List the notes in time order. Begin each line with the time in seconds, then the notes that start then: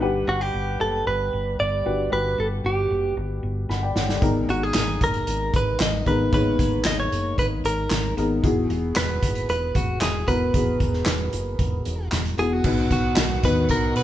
0.00 G1 G2 D4 G4 B4 F#5
0.27 G1 F#4
0.41 G4
0.54 G1
0.80 F#1 A4
1.07 G1 B4
1.33 G1
1.59 G1 D5
1.84 G1 D4 F#4 G4 B4
2.10 G1 G2 D4 F#4 G4 B4
2.38 G1 A4
2.64 G1 G4
2.90 F#1
3.17 G1
3.43 G1
3.69 G1 F#5 B5, snare
3.83 D5 G5
3.96 G1 C#5 F#5, snare
4.08 A4 D5, snare
4.21 G#1 G#2 B3 D#4 G#4 A#4, kick, closed hi-hat
4.48 G#1 F#4, closed hi-hat
4.63 G#4
4.74 G#1, snare, clap, closed hi-hat
5.01 F#1 A#4, kick, closed hi-hat
5.14 closed hi-hat
5.27 G#1, closed hi-hat
5.54 G#1 B4, kick, closed hi-hat
5.80 G#1 D#5, snare, clap, closed hi-hat
6.06 G#1 B3 D#4 G#4 A#4 B4, kick, closed hi-hat
6.32 G#1 G#2 A#3 D#4 G#4 B4 C#5, kick, closed hi-hat
6.38 B3
6.59 G#1, kick, closed hi-hat
6.84 G#1 D#5, snare, clap, closed hi-hat
7.00 C#5
7.11 F#1, closed hi-hat
7.38 G#1 B4, kick, closed hi-hat
7.64 G#1 A#4, closed hi-hat
7.90 G#1, snare, clap, closed hi-hat
8.17 G#1 B3 D#4 G#4 A#4, closed hi-hat
8.43 E1 E3 B3 E4 F#4 G#4, kick, closed hi-hat
8.70 E1, closed hi-hat
8.96 E1 B4, snare, clap, closed hi-hat
9.23 F#1, kick, closed hi-hat
9.35 closed hi-hat
9.49 E1 B4, closed hi-hat
9.75 E1 F#4, kick, closed hi-hat
10.01 E1 G#4, snare, clap, closed hi-hat
10.26 E1 B3 E4 F#4 A#4 B4, kick, closed hi-hat
10.53 E1 E3 B3 E4 F#4 G#4, kick, closed hi-hat
10.80 E1, kick, closed hi-hat
10.93 snare
11.05 E1, snare, clap, closed hi-hat
11.33 F#1, closed hi-hat
11.59 E1, kick, closed hi-hat
11.85 E1, closed hi-hat
12.12 E1, snare, clap, closed hi-hat
12.26 closed hi-hat
12.38 E1 B3 E4 F#4 G#4, closed hi-hat
12.53 F#4
12.64 B1 B2 D#3 F#3 B3 D#4 F#4 B4 F#5, kick, crash, tambourine
12.91 B1 F#4, kick, closed hi-hat, tambourine
13.16 B1, snare, clap, closed hi-hat, tambourine
13.43 D#2 B3 D#4 F#4 B4, kick, closed hi-hat, tambourine
13.69 B1 A#4, kick, closed hi-hat, tambourine
13.96 B2 B4, closed hi-hat, tambourine